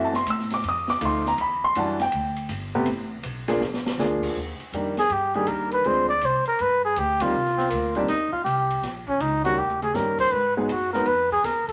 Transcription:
Already playing: upright bass F#2, grand piano E3 A3 C4 F#4
0.05 grand piano A5
0.13 grand piano C6, snare
0.26 upright bass A2, hi-hat pedal, ride
0.30 grand piano E6
0.39 snare
0.50 grand piano D6, snare, ride
0.64 upright bass F2, ride
0.69 grand piano D#6
0.88 grand piano D6, snare
1.01 upright bass D2, grand piano F3 A3 D#4 F4, hi-hat pedal, ride
1.05 grand piano C6
1.25 grand piano A#5, snare
1.38 upright bass E2, grand piano B5, ride
1.64 grand piano C6
1.75 upright bass F#2, grand piano E3 G3 D4 F#4 A5, hi-hat pedal, ride
2.00 grand piano G5, snare, ride
2.12 upright bass D2, ride
2.36 ride
2.49 upright bass G1, hi-hat pedal, ride
2.75 grand piano C3 A3 B3 G4
2.86 upright bass A1, ride
3.23 upright bass B1, hi-hat pedal, ride
3.48 grand piano F3 A#3 D4 G#4, snare, ride
3.61 upright bass A#1, snare
3.74 snare
3.86 snare
3.97 upright bass D2, grand piano F3 A#3 D4 G#4, snare, hi-hat pedal
4.23 kick, crash
4.35 upright bass D#2
4.60 muted upright bass stroke, ride
4.72 upright bass F2, grand piano D#3 G3 A#3 D4 G4, hi-hat pedal, ride
4.97 trumpet G#4, snare, ride
5.10 upright bass G2, trumpet G4, ride
5.34 grand piano D#3 G3 A#3 D4 G4, trumpet G#4, ride
5.47 upright bass D#2, trumpet A#4, hi-hat pedal, ride
5.71 trumpet B4, ride
5.84 upright bass D2, grand piano F3 G#3 C4 D4 G#4, trumpet C5, ride
6.09 trumpet D5
6.21 upright bass C2, trumpet C5, hi-hat pedal, ride
6.46 trumpet A#4, muted upright bass stroke, ride
6.59 upright bass G2, trumpet B4, ride
6.85 trumpet G#4
6.96 upright bass D2, trumpet G4, hi-hat pedal, ride
7.20 grand piano D#3 G3 A#3 C4 G4, trumpet F4, kick, ride
7.34 upright bass C2
7.45 snare
7.57 tenor saxophone C4, snare
7.70 upright bass D2, tenor saxophone A#3, hi-hat pedal, ride
7.95 grand piano D#3 G3 A#3 C4 G4, tenor saxophone D4, ride
8.08 upright bass D#2, tenor saxophone D#4, snare, ride
8.32 tenor saxophone F4, muted upright bass stroke, kick
8.44 upright bass C2, tenor saxophone G4, hi-hat pedal, ride
8.71 ride
8.82 upright bass A#1, snare, ride
9.07 trumpet C#4, kick
9.19 upright bass C#2, trumpet D#4, hi-hat pedal, ride
9.45 grand piano D#3 G3 A#3 C#4 G4, trumpet F#4, ride
9.57 upright bass D#2, trumpet G4, mid tom
9.70 mid tom
9.82 trumpet G#4, mid tom
9.94 upright bass G2, grand piano D#3 G3 A#3 C#4 G4, trumpet A#4, snare, hi-hat pedal
10.18 trumpet C5, kick, crash
10.32 upright bass G#2, trumpet B4
10.57 grand piano F#3 G#3 B3 D#4 G#4, trumpet D#4
10.69 upright bass F#2, trumpet F#4, hi-hat pedal, ride
10.93 grand piano F#3 G#3 B3 D#4 B4, trumpet A#4, snare
11.06 upright bass F2, trumpet B4, ride
11.31 trumpet G#4, kick
11.43 upright bass D#2, trumpet A#4, snare, hi-hat pedal, ride
11.68 trumpet A4, muted upright bass stroke, kick, ride

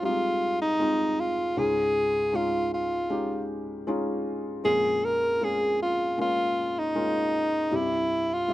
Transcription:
Already playing: felt piano F2 C3 G#3 C4 D#4 F4
0.02 felt piano G3 C4 D#4 G4, alto saxophone F4
0.09 felt piano G#3
0.62 alto saxophone D#4
0.79 felt piano G#3 C4 D#4 F4
1.20 alto saxophone F4
1.56 felt piano C#2 G#2 G#3 C#4 D#4 F4, alto saxophone G#4
2.33 felt piano G#3 C#4 D#4 F4, alto saxophone F4
2.74 alto saxophone F4
3.10 felt piano G#3 C#4 D#4 G4
3.87 felt piano G#3 C#4 D#4 F4
4.64 felt piano A#1 F2 G#3 A#3 C#4 F4, alto saxophone G#4
5.04 alto saxophone A#4
5.41 felt piano G#3 A#3 C#4 G#4, alto saxophone G#4
5.82 alto saxophone F4
6.18 felt piano G#3 A#3 C#4 F4, alto saxophone F4
6.79 alto saxophone D#4
6.95 felt piano G#3 A#3 C#4 F4
7.71 felt piano C2 G2 G3 C4 E4 G4
7.76 alto saxophone E4
8.33 alto saxophone F4
8.48 felt piano G3 C4 G4 E5

